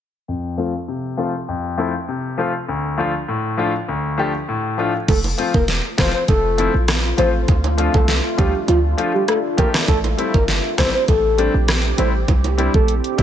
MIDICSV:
0, 0, Header, 1, 6, 480
1, 0, Start_track
1, 0, Tempo, 600000
1, 227, Time_signature, 4, 2, 24, 8
1, 10582, End_track
2, 0, Start_track
2, 0, Title_t, "Soft synth lead"
2, 0, Program_c, 0, 80
2, 4068, Note_on_c, 0, 69, 103
2, 4153, Note_off_c, 0, 69, 0
2, 4434, Note_on_c, 0, 70, 83
2, 4510, Note_off_c, 0, 70, 0
2, 4788, Note_on_c, 0, 72, 78
2, 4873, Note_off_c, 0, 72, 0
2, 4914, Note_on_c, 0, 72, 83
2, 4990, Note_off_c, 0, 72, 0
2, 5029, Note_on_c, 0, 69, 107
2, 5373, Note_off_c, 0, 69, 0
2, 5747, Note_on_c, 0, 72, 79
2, 5833, Note_off_c, 0, 72, 0
2, 6353, Note_on_c, 0, 69, 84
2, 6515, Note_off_c, 0, 69, 0
2, 6706, Note_on_c, 0, 67, 78
2, 6868, Note_off_c, 0, 67, 0
2, 6946, Note_on_c, 0, 65, 83
2, 7032, Note_off_c, 0, 65, 0
2, 7312, Note_on_c, 0, 67, 79
2, 7389, Note_off_c, 0, 67, 0
2, 7424, Note_on_c, 0, 69, 80
2, 7511, Note_off_c, 0, 69, 0
2, 7665, Note_on_c, 0, 70, 77
2, 7751, Note_off_c, 0, 70, 0
2, 7904, Note_on_c, 0, 69, 111
2, 7991, Note_off_c, 0, 69, 0
2, 8272, Note_on_c, 0, 70, 72
2, 8349, Note_off_c, 0, 70, 0
2, 8626, Note_on_c, 0, 72, 68
2, 8712, Note_off_c, 0, 72, 0
2, 8753, Note_on_c, 0, 72, 75
2, 8830, Note_off_c, 0, 72, 0
2, 8866, Note_on_c, 0, 69, 100
2, 9212, Note_off_c, 0, 69, 0
2, 9587, Note_on_c, 0, 72, 84
2, 9672, Note_off_c, 0, 72, 0
2, 10193, Note_on_c, 0, 69, 81
2, 10355, Note_off_c, 0, 69, 0
2, 10546, Note_on_c, 0, 67, 80
2, 10582, Note_off_c, 0, 67, 0
2, 10582, End_track
3, 0, Start_track
3, 0, Title_t, "Ambient pad"
3, 0, Program_c, 1, 92
3, 4068, Note_on_c, 1, 57, 77
3, 4069, Note_on_c, 1, 65, 90
3, 4070, Note_on_c, 1, 60, 75
3, 5969, Note_off_c, 1, 60, 0
3, 5989, Note_on_c, 1, 62, 76
3, 7876, Note_off_c, 1, 65, 0
3, 7889, Note_off_c, 1, 62, 0
3, 7908, Note_on_c, 1, 60, 72
3, 7908, Note_on_c, 1, 67, 86
3, 9796, Note_off_c, 1, 57, 0
3, 9827, Note_on_c, 1, 48, 78
3, 9827, Note_on_c, 1, 62, 75
3, 9827, Note_on_c, 1, 64, 74
3, 10582, Note_off_c, 1, 48, 0
3, 10582, Note_off_c, 1, 60, 0
3, 10582, Note_off_c, 1, 62, 0
3, 10582, Note_off_c, 1, 64, 0
3, 10582, Note_off_c, 1, 67, 0
3, 10582, End_track
4, 0, Start_track
4, 0, Title_t, "Grand piano"
4, 0, Program_c, 2, 0
4, 226, Note_on_c, 2, 41, 77
4, 460, Note_on_c, 2, 53, 79
4, 464, Note_on_c, 2, 57, 74
4, 469, Note_on_c, 2, 60, 72
4, 474, Note_on_c, 2, 65, 86
4, 565, Note_off_c, 2, 53, 0
4, 567, Note_off_c, 2, 57, 0
4, 570, Note_off_c, 2, 60, 0
4, 572, Note_off_c, 2, 65, 0
4, 589, Note_off_c, 2, 41, 0
4, 707, Note_on_c, 2, 48, 78
4, 939, Note_on_c, 2, 53, 79
4, 944, Note_on_c, 2, 57, 69
4, 948, Note_on_c, 2, 60, 76
4, 953, Note_on_c, 2, 65, 86
4, 1045, Note_off_c, 2, 53, 0
4, 1047, Note_off_c, 2, 57, 0
4, 1049, Note_off_c, 2, 60, 0
4, 1052, Note_off_c, 2, 65, 0
4, 1069, Note_off_c, 2, 48, 0
4, 1187, Note_on_c, 2, 41, 79
4, 1421, Note_on_c, 2, 53, 84
4, 1425, Note_on_c, 2, 57, 75
4, 1430, Note_on_c, 2, 60, 80
4, 1434, Note_on_c, 2, 64, 91
4, 1526, Note_off_c, 2, 53, 0
4, 1528, Note_off_c, 2, 57, 0
4, 1530, Note_off_c, 2, 60, 0
4, 1532, Note_off_c, 2, 64, 0
4, 1550, Note_off_c, 2, 41, 0
4, 1667, Note_on_c, 2, 48, 79
4, 1901, Note_on_c, 2, 53, 79
4, 1906, Note_on_c, 2, 57, 74
4, 1910, Note_on_c, 2, 60, 72
4, 1915, Note_on_c, 2, 65, 90
4, 2005, Note_off_c, 2, 53, 0
4, 2008, Note_off_c, 2, 57, 0
4, 2010, Note_off_c, 2, 60, 0
4, 2013, Note_off_c, 2, 65, 0
4, 2030, Note_off_c, 2, 48, 0
4, 2148, Note_on_c, 2, 38, 78
4, 2381, Note_on_c, 2, 53, 84
4, 2385, Note_on_c, 2, 57, 74
4, 2390, Note_on_c, 2, 62, 73
4, 2395, Note_on_c, 2, 65, 92
4, 2486, Note_off_c, 2, 53, 0
4, 2488, Note_off_c, 2, 57, 0
4, 2490, Note_off_c, 2, 62, 0
4, 2493, Note_off_c, 2, 65, 0
4, 2510, Note_off_c, 2, 38, 0
4, 2627, Note_on_c, 2, 45, 82
4, 2859, Note_on_c, 2, 53, 83
4, 2864, Note_on_c, 2, 57, 76
4, 2869, Note_on_c, 2, 62, 77
4, 2873, Note_on_c, 2, 65, 91
4, 2965, Note_off_c, 2, 53, 0
4, 2967, Note_off_c, 2, 57, 0
4, 2970, Note_off_c, 2, 62, 0
4, 2972, Note_off_c, 2, 65, 0
4, 2990, Note_off_c, 2, 45, 0
4, 3108, Note_on_c, 2, 38, 78
4, 3341, Note_on_c, 2, 53, 87
4, 3346, Note_on_c, 2, 57, 79
4, 3350, Note_on_c, 2, 62, 76
4, 3355, Note_on_c, 2, 67, 94
4, 3446, Note_off_c, 2, 53, 0
4, 3448, Note_off_c, 2, 57, 0
4, 3450, Note_off_c, 2, 62, 0
4, 3452, Note_off_c, 2, 67, 0
4, 3470, Note_off_c, 2, 38, 0
4, 3588, Note_on_c, 2, 45, 81
4, 3822, Note_on_c, 2, 53, 77
4, 3827, Note_on_c, 2, 57, 74
4, 3831, Note_on_c, 2, 62, 75
4, 3835, Note_on_c, 2, 65, 88
4, 3926, Note_off_c, 2, 53, 0
4, 3929, Note_off_c, 2, 57, 0
4, 3930, Note_off_c, 2, 62, 0
4, 3933, Note_off_c, 2, 65, 0
4, 3950, Note_off_c, 2, 45, 0
4, 4301, Note_on_c, 2, 53, 73
4, 4305, Note_on_c, 2, 57, 67
4, 4310, Note_on_c, 2, 60, 72
4, 4315, Note_on_c, 2, 65, 81
4, 4406, Note_off_c, 2, 53, 0
4, 4408, Note_off_c, 2, 57, 0
4, 4410, Note_off_c, 2, 60, 0
4, 4413, Note_off_c, 2, 65, 0
4, 4781, Note_on_c, 2, 53, 77
4, 4785, Note_on_c, 2, 57, 67
4, 4790, Note_on_c, 2, 60, 69
4, 4795, Note_on_c, 2, 65, 79
4, 4886, Note_off_c, 2, 53, 0
4, 4888, Note_off_c, 2, 57, 0
4, 4890, Note_off_c, 2, 60, 0
4, 4892, Note_off_c, 2, 65, 0
4, 5262, Note_on_c, 2, 53, 80
4, 5266, Note_on_c, 2, 57, 72
4, 5271, Note_on_c, 2, 60, 74
4, 5275, Note_on_c, 2, 64, 88
4, 5366, Note_off_c, 2, 53, 0
4, 5368, Note_off_c, 2, 57, 0
4, 5371, Note_off_c, 2, 60, 0
4, 5373, Note_off_c, 2, 64, 0
4, 5740, Note_on_c, 2, 53, 74
4, 5745, Note_on_c, 2, 57, 66
4, 5750, Note_on_c, 2, 60, 67
4, 5754, Note_on_c, 2, 65, 84
4, 5845, Note_off_c, 2, 53, 0
4, 5848, Note_off_c, 2, 57, 0
4, 5850, Note_off_c, 2, 60, 0
4, 5852, Note_off_c, 2, 65, 0
4, 6220, Note_on_c, 2, 53, 78
4, 6224, Note_on_c, 2, 57, 69
4, 6229, Note_on_c, 2, 62, 68
4, 6234, Note_on_c, 2, 65, 82
4, 6325, Note_off_c, 2, 53, 0
4, 6327, Note_off_c, 2, 57, 0
4, 6330, Note_off_c, 2, 62, 0
4, 6332, Note_off_c, 2, 65, 0
4, 6700, Note_on_c, 2, 53, 75
4, 6705, Note_on_c, 2, 57, 69
4, 6709, Note_on_c, 2, 62, 69
4, 6714, Note_on_c, 2, 65, 82
4, 6805, Note_off_c, 2, 53, 0
4, 6808, Note_off_c, 2, 57, 0
4, 6810, Note_off_c, 2, 62, 0
4, 6812, Note_off_c, 2, 65, 0
4, 7180, Note_on_c, 2, 53, 80
4, 7184, Note_on_c, 2, 57, 74
4, 7189, Note_on_c, 2, 62, 71
4, 7194, Note_on_c, 2, 65, 86
4, 7285, Note_off_c, 2, 53, 0
4, 7287, Note_off_c, 2, 57, 0
4, 7290, Note_off_c, 2, 62, 0
4, 7292, Note_off_c, 2, 65, 0
4, 7659, Note_on_c, 2, 53, 74
4, 7663, Note_on_c, 2, 57, 68
4, 7668, Note_on_c, 2, 62, 68
4, 7673, Note_on_c, 2, 67, 84
4, 7765, Note_off_c, 2, 53, 0
4, 7767, Note_off_c, 2, 57, 0
4, 7769, Note_off_c, 2, 62, 0
4, 7771, Note_off_c, 2, 67, 0
4, 8139, Note_on_c, 2, 55, 73
4, 8144, Note_on_c, 2, 57, 69
4, 8148, Note_on_c, 2, 60, 67
4, 8153, Note_on_c, 2, 64, 84
4, 8245, Note_off_c, 2, 55, 0
4, 8247, Note_off_c, 2, 57, 0
4, 8249, Note_off_c, 2, 60, 0
4, 8252, Note_off_c, 2, 64, 0
4, 8621, Note_on_c, 2, 55, 77
4, 8625, Note_on_c, 2, 57, 69
4, 8630, Note_on_c, 2, 60, 68
4, 8634, Note_on_c, 2, 64, 82
4, 8725, Note_off_c, 2, 55, 0
4, 8728, Note_off_c, 2, 57, 0
4, 8730, Note_off_c, 2, 60, 0
4, 8732, Note_off_c, 2, 64, 0
4, 9100, Note_on_c, 2, 55, 80
4, 9105, Note_on_c, 2, 57, 72
4, 9109, Note_on_c, 2, 60, 73
4, 9113, Note_on_c, 2, 62, 86
4, 9205, Note_off_c, 2, 55, 0
4, 9208, Note_off_c, 2, 57, 0
4, 9210, Note_off_c, 2, 60, 0
4, 9212, Note_off_c, 2, 62, 0
4, 9580, Note_on_c, 2, 55, 74
4, 9585, Note_on_c, 2, 57, 70
4, 9589, Note_on_c, 2, 60, 72
4, 9594, Note_on_c, 2, 64, 83
4, 9685, Note_off_c, 2, 55, 0
4, 9688, Note_off_c, 2, 57, 0
4, 9690, Note_off_c, 2, 60, 0
4, 9692, Note_off_c, 2, 64, 0
4, 10060, Note_on_c, 2, 55, 77
4, 10064, Note_on_c, 2, 60, 70
4, 10069, Note_on_c, 2, 62, 70
4, 10074, Note_on_c, 2, 64, 83
4, 10165, Note_off_c, 2, 55, 0
4, 10167, Note_off_c, 2, 60, 0
4, 10170, Note_off_c, 2, 62, 0
4, 10172, Note_off_c, 2, 64, 0
4, 10541, Note_on_c, 2, 55, 75
4, 10545, Note_on_c, 2, 60, 67
4, 10550, Note_on_c, 2, 62, 65
4, 10554, Note_on_c, 2, 64, 84
4, 10582, Note_off_c, 2, 55, 0
4, 10582, Note_off_c, 2, 60, 0
4, 10582, Note_off_c, 2, 62, 0
4, 10582, Note_off_c, 2, 64, 0
4, 10582, End_track
5, 0, Start_track
5, 0, Title_t, "808-style bass"
5, 0, Program_c, 3, 38
5, 4067, Note_on_c, 3, 29, 95
5, 4278, Note_off_c, 3, 29, 0
5, 4435, Note_on_c, 3, 28, 93
5, 4646, Note_off_c, 3, 28, 0
5, 4788, Note_on_c, 3, 29, 91
5, 4900, Note_off_c, 3, 29, 0
5, 5028, Note_on_c, 3, 29, 101
5, 5350, Note_off_c, 3, 29, 0
5, 5393, Note_on_c, 3, 34, 87
5, 5704, Note_off_c, 3, 34, 0
5, 5746, Note_on_c, 3, 33, 90
5, 5957, Note_off_c, 3, 33, 0
5, 5987, Note_on_c, 3, 38, 106
5, 6310, Note_off_c, 3, 38, 0
5, 6354, Note_on_c, 3, 36, 85
5, 6565, Note_off_c, 3, 36, 0
5, 6708, Note_on_c, 3, 38, 100
5, 6819, Note_off_c, 3, 38, 0
5, 6945, Note_on_c, 3, 38, 112
5, 7157, Note_off_c, 3, 38, 0
5, 7907, Note_on_c, 3, 33, 106
5, 8118, Note_off_c, 3, 33, 0
5, 8274, Note_on_c, 3, 31, 81
5, 8485, Note_off_c, 3, 31, 0
5, 8628, Note_on_c, 3, 33, 98
5, 8739, Note_off_c, 3, 33, 0
5, 8868, Note_on_c, 3, 33, 101
5, 9190, Note_off_c, 3, 33, 0
5, 9234, Note_on_c, 3, 34, 101
5, 9544, Note_off_c, 3, 34, 0
5, 9586, Note_on_c, 3, 33, 89
5, 9798, Note_off_c, 3, 33, 0
5, 9827, Note_on_c, 3, 36, 104
5, 10150, Note_off_c, 3, 36, 0
5, 10195, Note_on_c, 3, 34, 96
5, 10406, Note_off_c, 3, 34, 0
5, 10547, Note_on_c, 3, 36, 87
5, 10582, Note_off_c, 3, 36, 0
5, 10582, End_track
6, 0, Start_track
6, 0, Title_t, "Drums"
6, 4067, Note_on_c, 9, 42, 75
6, 4067, Note_on_c, 9, 49, 101
6, 4068, Note_on_c, 9, 36, 114
6, 4068, Note_on_c, 9, 60, 74
6, 4147, Note_off_c, 9, 42, 0
6, 4147, Note_off_c, 9, 49, 0
6, 4148, Note_off_c, 9, 36, 0
6, 4148, Note_off_c, 9, 60, 0
6, 4194, Note_on_c, 9, 42, 54
6, 4194, Note_on_c, 9, 60, 70
6, 4274, Note_off_c, 9, 42, 0
6, 4274, Note_off_c, 9, 60, 0
6, 4308, Note_on_c, 9, 42, 81
6, 4388, Note_off_c, 9, 42, 0
6, 4435, Note_on_c, 9, 36, 99
6, 4436, Note_on_c, 9, 60, 75
6, 4515, Note_off_c, 9, 36, 0
6, 4516, Note_off_c, 9, 60, 0
6, 4545, Note_on_c, 9, 38, 68
6, 4547, Note_on_c, 9, 42, 72
6, 4625, Note_off_c, 9, 38, 0
6, 4627, Note_off_c, 9, 42, 0
6, 4786, Note_on_c, 9, 38, 109
6, 4788, Note_on_c, 9, 36, 93
6, 4788, Note_on_c, 9, 42, 85
6, 4788, Note_on_c, 9, 61, 81
6, 4793, Note_on_c, 9, 37, 86
6, 4866, Note_off_c, 9, 38, 0
6, 4868, Note_off_c, 9, 36, 0
6, 4868, Note_off_c, 9, 42, 0
6, 4868, Note_off_c, 9, 61, 0
6, 4873, Note_off_c, 9, 37, 0
6, 5026, Note_on_c, 9, 42, 66
6, 5027, Note_on_c, 9, 60, 69
6, 5028, Note_on_c, 9, 36, 89
6, 5106, Note_off_c, 9, 42, 0
6, 5107, Note_off_c, 9, 60, 0
6, 5108, Note_off_c, 9, 36, 0
6, 5267, Note_on_c, 9, 42, 75
6, 5347, Note_off_c, 9, 42, 0
6, 5505, Note_on_c, 9, 42, 77
6, 5507, Note_on_c, 9, 37, 99
6, 5507, Note_on_c, 9, 38, 122
6, 5514, Note_off_c, 9, 37, 0
6, 5514, Note_on_c, 9, 37, 92
6, 5585, Note_off_c, 9, 42, 0
6, 5587, Note_off_c, 9, 38, 0
6, 5594, Note_off_c, 9, 37, 0
6, 5745, Note_on_c, 9, 42, 82
6, 5748, Note_on_c, 9, 61, 77
6, 5825, Note_off_c, 9, 42, 0
6, 5828, Note_off_c, 9, 61, 0
6, 5986, Note_on_c, 9, 42, 72
6, 5987, Note_on_c, 9, 36, 114
6, 5989, Note_on_c, 9, 60, 72
6, 6066, Note_off_c, 9, 42, 0
6, 6067, Note_off_c, 9, 36, 0
6, 6069, Note_off_c, 9, 60, 0
6, 6113, Note_on_c, 9, 42, 52
6, 6114, Note_on_c, 9, 60, 75
6, 6193, Note_off_c, 9, 42, 0
6, 6194, Note_off_c, 9, 60, 0
6, 6227, Note_on_c, 9, 42, 79
6, 6307, Note_off_c, 9, 42, 0
6, 6354, Note_on_c, 9, 36, 99
6, 6354, Note_on_c, 9, 60, 72
6, 6434, Note_off_c, 9, 36, 0
6, 6434, Note_off_c, 9, 60, 0
6, 6465, Note_on_c, 9, 38, 72
6, 6467, Note_on_c, 9, 42, 74
6, 6545, Note_off_c, 9, 38, 0
6, 6547, Note_off_c, 9, 42, 0
6, 6707, Note_on_c, 9, 61, 76
6, 6708, Note_on_c, 9, 36, 93
6, 6708, Note_on_c, 9, 42, 84
6, 6787, Note_off_c, 9, 61, 0
6, 6788, Note_off_c, 9, 36, 0
6, 6788, Note_off_c, 9, 42, 0
6, 6946, Note_on_c, 9, 42, 71
6, 6946, Note_on_c, 9, 60, 67
6, 7026, Note_off_c, 9, 42, 0
6, 7026, Note_off_c, 9, 60, 0
6, 7187, Note_on_c, 9, 42, 75
6, 7267, Note_off_c, 9, 42, 0
6, 7426, Note_on_c, 9, 42, 77
6, 7428, Note_on_c, 9, 37, 95
6, 7506, Note_off_c, 9, 42, 0
6, 7508, Note_off_c, 9, 37, 0
6, 7665, Note_on_c, 9, 42, 88
6, 7667, Note_on_c, 9, 36, 96
6, 7667, Note_on_c, 9, 61, 80
6, 7745, Note_off_c, 9, 42, 0
6, 7747, Note_off_c, 9, 36, 0
6, 7747, Note_off_c, 9, 61, 0
6, 7794, Note_on_c, 9, 38, 119
6, 7801, Note_on_c, 9, 37, 96
6, 7874, Note_off_c, 9, 38, 0
6, 7881, Note_off_c, 9, 37, 0
6, 7906, Note_on_c, 9, 42, 75
6, 7907, Note_on_c, 9, 36, 118
6, 7907, Note_on_c, 9, 60, 73
6, 7986, Note_off_c, 9, 42, 0
6, 7987, Note_off_c, 9, 36, 0
6, 7987, Note_off_c, 9, 60, 0
6, 8033, Note_on_c, 9, 60, 74
6, 8034, Note_on_c, 9, 42, 53
6, 8113, Note_off_c, 9, 60, 0
6, 8114, Note_off_c, 9, 42, 0
6, 8148, Note_on_c, 9, 42, 80
6, 8228, Note_off_c, 9, 42, 0
6, 8274, Note_on_c, 9, 36, 99
6, 8274, Note_on_c, 9, 60, 76
6, 8354, Note_off_c, 9, 36, 0
6, 8354, Note_off_c, 9, 60, 0
6, 8385, Note_on_c, 9, 38, 68
6, 8387, Note_on_c, 9, 42, 71
6, 8465, Note_off_c, 9, 38, 0
6, 8467, Note_off_c, 9, 42, 0
6, 8626, Note_on_c, 9, 38, 110
6, 8627, Note_on_c, 9, 61, 76
6, 8628, Note_on_c, 9, 36, 92
6, 8628, Note_on_c, 9, 42, 81
6, 8633, Note_on_c, 9, 37, 86
6, 8706, Note_off_c, 9, 38, 0
6, 8707, Note_off_c, 9, 61, 0
6, 8708, Note_off_c, 9, 36, 0
6, 8708, Note_off_c, 9, 42, 0
6, 8713, Note_off_c, 9, 37, 0
6, 8866, Note_on_c, 9, 42, 68
6, 8867, Note_on_c, 9, 36, 90
6, 8867, Note_on_c, 9, 60, 68
6, 8946, Note_off_c, 9, 42, 0
6, 8947, Note_off_c, 9, 36, 0
6, 8947, Note_off_c, 9, 60, 0
6, 9107, Note_on_c, 9, 42, 78
6, 9187, Note_off_c, 9, 42, 0
6, 9346, Note_on_c, 9, 42, 75
6, 9348, Note_on_c, 9, 37, 101
6, 9348, Note_on_c, 9, 38, 121
6, 9355, Note_off_c, 9, 37, 0
6, 9355, Note_on_c, 9, 37, 95
6, 9426, Note_off_c, 9, 42, 0
6, 9428, Note_off_c, 9, 38, 0
6, 9435, Note_off_c, 9, 37, 0
6, 9585, Note_on_c, 9, 42, 88
6, 9586, Note_on_c, 9, 61, 75
6, 9665, Note_off_c, 9, 42, 0
6, 9666, Note_off_c, 9, 61, 0
6, 9826, Note_on_c, 9, 42, 74
6, 9827, Note_on_c, 9, 36, 117
6, 9828, Note_on_c, 9, 60, 75
6, 9906, Note_off_c, 9, 42, 0
6, 9907, Note_off_c, 9, 36, 0
6, 9908, Note_off_c, 9, 60, 0
6, 9954, Note_on_c, 9, 60, 72
6, 9955, Note_on_c, 9, 42, 52
6, 10034, Note_off_c, 9, 60, 0
6, 10035, Note_off_c, 9, 42, 0
6, 10068, Note_on_c, 9, 42, 82
6, 10068, Note_on_c, 9, 60, 55
6, 10148, Note_off_c, 9, 42, 0
6, 10148, Note_off_c, 9, 60, 0
6, 10194, Note_on_c, 9, 36, 103
6, 10274, Note_off_c, 9, 36, 0
6, 10307, Note_on_c, 9, 42, 72
6, 10387, Note_off_c, 9, 42, 0
6, 10434, Note_on_c, 9, 42, 52
6, 10514, Note_off_c, 9, 42, 0
6, 10547, Note_on_c, 9, 61, 74
6, 10548, Note_on_c, 9, 36, 95
6, 10549, Note_on_c, 9, 42, 85
6, 10582, Note_off_c, 9, 36, 0
6, 10582, Note_off_c, 9, 42, 0
6, 10582, Note_off_c, 9, 61, 0
6, 10582, End_track
0, 0, End_of_file